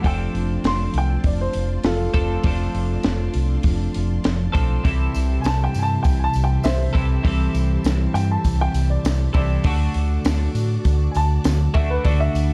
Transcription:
Already playing: string machine C6
0.01 fingered electric bass F1, clean electric guitar F3 A3 C4 D4 A4, string machine F4 D5 A5, upright piano F#5, kick, open hi-hat
0.06 clean electric guitar C5, upright piano G5
0.34 fingered electric bass F1, open hi-hat
0.64 fingered electric bass F1, upright piano C6, snare, open hi-hat
0.94 fingered electric bass C2, open hi-hat
0.98 upright piano G5
1.24 fingered electric bass F1, upright piano D5, kick, open hi-hat
1.41 upright piano C5
1.53 fingered electric bass F1, open hi-hat
1.84 fingered electric bass F1, upright piano F4 A4, snare, open hi-hat
2.14 fingered electric bass F1, clean electric guitar F3 A3 C4 D4 A4 C5, kick, open hi-hat
2.43 fingered electric bass F1, clean electric guitar F3 A3 C4 D4 A4 C5, kick, open hi-hat
2.74 fingered electric bass F1, open hi-hat
3.03 fingered electric bass F1, snare, open hi-hat
3.34 fingered electric bass C2, open hi-hat
3.63 fingered electric bass F1, kick, open hi-hat
3.94 fingered electric bass F1, open hi-hat
4.24 fingered electric bass F1, snare, open hi-hat
4.53 fingered electric bass B1, clean electric guitar F3 A3 C4 D4 A4 C5, kick, open hi-hat
4.83 fingered electric bass C2, clean electric guitar C3 E3 G3 C4 E4 A4, string machine G4 E5, kick, open hi-hat
5.14 fingered electric bass C2, open hi-hat, tambourine
5.41 fingered electric bass C2, upright piano G#5, tambourine
5.45 upright piano A5, snare, open hi-hat
5.64 upright piano G5
5.74 fingered electric bass G2, open hi-hat, tambourine
5.78 upright piano G#5
5.83 upright piano A5
6.03 fingered electric bass C2, upright piano G5, kick, open hi-hat, tambourine
6.19 upright piano G#5
6.24 upright piano A5
6.33 fingered electric bass C2, open hi-hat, tambourine
6.44 upright piano G5
6.63 fingered electric bass C2, upright piano C5 E5, snare, open hi-hat, tambourine
6.93 fingered electric bass C2, clean electric guitar C3 E3 G3 C4 E4 A4, kick, open hi-hat
7.23 fingered electric bass C2, clean electric guitar C3 E3 G3 C4 E4 A4, kick, open hi-hat
7.54 fingered electric bass C2, open hi-hat, tambourine
7.84 fingered electric bass C2, snare, open hi-hat, tambourine
8.14 fingered electric bass G2, upright piano G5, open hi-hat, tambourine
8.31 upright piano A5
8.44 fingered electric bass C2, kick, open hi-hat, tambourine
8.61 upright piano G5
8.74 fingered electric bass C2, open hi-hat, tambourine
8.90 upright piano D5
9.04 fingered electric bass C2, snare, open hi-hat, tambourine
9.34 fingered electric bass C2, clean electric guitar C3 E3 G3 C4 E4 A4, upright piano D5, kick, open hi-hat
9.64 fingered electric bass D2, clean electric guitar D3 A3 D4 F#4 A4, string machine F#4 D5 D6, kick, open hi-hat
9.94 fingered electric bass D2, open hi-hat
10.25 fingered electric bass D2, snare, open hi-hat, tambourine
10.54 fingered electric bass A2, open hi-hat, tambourine
10.85 fingered electric bass D2, kick, open hi-hat, tambourine
11.11 upright piano G#5, tambourine
11.15 fingered electric bass D2, upright piano A5, open hi-hat
11.44 fingered electric bass D2, snare, open hi-hat, tambourine
11.74 fingered electric bass D2, clean electric guitar D3 A3 D4 F#4 A4, upright piano E5, kick, open hi-hat
11.90 upright piano B4
12.03 fingered electric bass D2, clean electric guitar D3 A3 D4 F#4 A4, upright piano D5, string machine B5, kick, open hi-hat, tambourine
12.20 upright piano E5
12.34 fingered electric bass D2, open hi-hat, tambourine

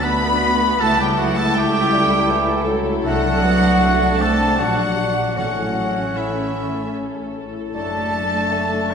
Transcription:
Already playing: double bass section D2, harp D3 A3 D4 F#4 A4 D5 A5, french horn section A3 D4, viola section D4 F#4
0.02 cello section B3, bassoon B3, oboe B4, harp F#5, violin section B5, flute section B5
0.23 harp D5
0.43 harp F#4
0.80 double bass section C#2, harp C#3, french horn section A3 E4, cello section A3, viola section E4 A4, oboe A4, flute section A5, violin section A5
0.99 cello section G3, harp G3, oboe G4, violin section G5, flute section G5
1.18 cello section F#3, harp A3, oboe F#4, flute section F#5, violin section F#5
1.36 cello section A3, harp E4, oboe A4, flute section A5, violin section A5
1.55 cello section G3, bassoon A3, french horn section A3 E4, oboe G4, harp A4, violin section G5, flute section G5
1.93 bassoon G3, harp E5
2.13 harp A5
2.31 bassoon E3, harp E5
2.50 harp A4
2.68 bassoon F#3, harp E4
2.87 harp A3
3.04 double bass section C2, harp C3, cello section F#3, french horn section A3 D4, bassoon A3, viola section D4, oboe F#4, flute section F#5, violin section F#5
3.26 harp F#3
3.44 harp A3, bassoon B3
3.64 harp D4
3.81 bassoon A3, harp A4
4.01 harp D4
4.19 cello section A3, bassoon C4, oboe A4, violin section A5, flute section A5
4.58 double bass section A#1, harp A#2, cello section F#3, french horn section G3 D4, bassoon D4, oboe F#4, viola section G4, violin section F#5, flute section F#5
4.78 harp A#3
5.18 harp A#3
5.36 double bass section A1, timpani A2, harp A2, cello section F#3, french horn section A3 C#4, bassoon C#4, viola section C#4 A4, oboe F#4, violin section F#5, flute section F#5
5.57 harp E3
5.77 harp C#4
5.97 harp E4
6.15 cello section E3, french horn section A3 C#4, oboe E4, harp A4, violin section E5, flute section E5
6.37 harp C#5
6.57 harp E5
6.77 harp A5
6.97 harp E5
7.17 harp C#5
7.36 harp E4
7.55 harp C#4
7.74 double bass section F#1, harp F#2, cello section A3, french horn section A3 D4, viola section D4, bassoon D4, oboe A4, flute section A5, violin section A5
7.95 harp F#3
8.15 harp D4
8.35 harp F#4
8.53 bassoon A3, harp A4
8.73 harp D5
8.91 oboe C#5, flute section C#6

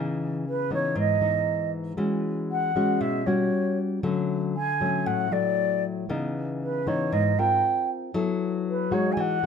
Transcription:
Already playing: nylon-string guitar C#3 E3 B3 D#4
0.48 flute B4
0.71 nylon-string guitar E3 B3 D#4, flute C#5
0.95 nylon-string guitar G#2, flute D#5
1.21 nylon-string guitar E3 B3 D#4
1.97 nylon-string guitar E3 G#3 C#4 F#4
2.51 flute F#5
2.76 nylon-string guitar G#3 C#4 F#4
3.01 nylon-string guitar B2, flute E5
3.26 nylon-string guitar G3 C#4 F#4, flute C#5
4.03 nylon-string guitar D3 F#3 A3 C#4
4.56 flute G#5
4.81 nylon-string guitar F#3 A3 C#4
5.06 nylon-string guitar A2, flute F#5
5.32 nylon-string guitar F#3 A3, flute D5
6.09 nylon-string guitar C#3 E3 B3 D#4
6.62 flute B4
6.87 nylon-string guitar E3 B3 D#4, flute C#5
7.12 nylon-string guitar G#2, flute D#5
7.38 nylon-string guitar C4 F4 A#4, flute G5
8.14 nylon-string guitar F#3 B3 E4 A4
8.69 flute B4
8.91 nylon-string guitar G#3 D#4 F#4, flute C#5
9.12 flute G#5
9.17 nylon-string guitar E3, flute F#5

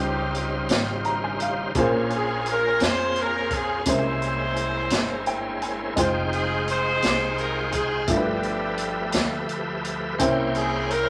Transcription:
Already playing: upright bass C#2, grand piano C#3 G3 C4 D#4 F4 C5, tonewheel organ C#3 G3 D#4 F4 C5, horn section C4 D#4 G4
0.00 closed hi-hat
0.35 closed hi-hat
0.69 upright bass G#1, snare, closed hi-hat
1.05 grand piano A#5, closed hi-hat
1.24 grand piano G#5
1.40 grand piano F5, closed hi-hat
1.75 upright bass A#1, grand piano A#2 A#3 C#4 F4 G#4, tonewheel organ A#3 C#4 F4 G#4 C5, kick, closed hi-hat
1.79 grand piano C5
2.10 closed hi-hat
2.15 horn section G#4
2.46 closed hi-hat
2.51 horn section A#4
2.80 upright bass F2, snare, closed hi-hat
2.85 horn section C5
3.16 closed hi-hat
3.21 horn section A#4
3.51 horn section G#4, kick, closed hi-hat
3.86 upright bass C2, grand piano C3 G#3 A#3 C#4 E4 C5, tonewheel organ G#3 A#3 C#4 D#4 C5, kick, closed hi-hat
3.91 horn section E4 G4 C5, tonewheel organ E4
4.22 closed hi-hat
4.56 closed hi-hat
4.90 upright bass G1, snare, closed hi-hat
5.26 grand piano G5, closed hi-hat
5.62 grand piano G#5, closed hi-hat
5.96 upright bass F1, grand piano G#3 D#4 F4 C5 G5, tonewheel organ G#3 D#4 F4 C5 G5, kick, closed hi-hat
6.33 horn section G#4, closed hi-hat
6.68 horn section D#4 G#4 C5, closed hi-hat
7.02 upright bass C2, snare, closed hi-hat
7.38 horn section A#4, closed hi-hat
7.72 horn section G#4, kick, closed hi-hat
8.07 upright bass G1, grand piano G2 A3 E4 F4 G4, tonewheel organ F3 A3 G4 A4 E5, horn section B3 D4, kick, closed hi-hat
8.11 horn section G4, grand piano A#4, tonewheel organ B4
8.17 grand piano B4
8.43 closed hi-hat
8.78 closed hi-hat
9.12 upright bass D2, snare, closed hi-hat
9.49 closed hi-hat
9.85 closed hi-hat
10.18 upright bass C2, grand piano C3 A#3 C#4 E4 C5 G5, tonewheel organ A#3 C#4 E4 C5 G5, kick, closed hi-hat
10.55 horn section G#4, closed hi-hat
10.91 horn section A#4, closed hi-hat

